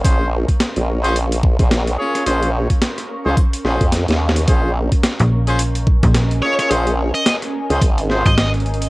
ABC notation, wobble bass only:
X:1
M:4/4
L:1/16
Q:"Swing 16ths" 1/4=108
K:Bbm
V:1 name="Wobble bass" clef=bass
B,,,3 z2 B,,,6 B,,,3 z2 | B,,,3 z4 D,, z2 B,,, F,,2 E,,3 | B,,,3 z12 z | B,,,3 z4 D,, A,,,3 z4 z |]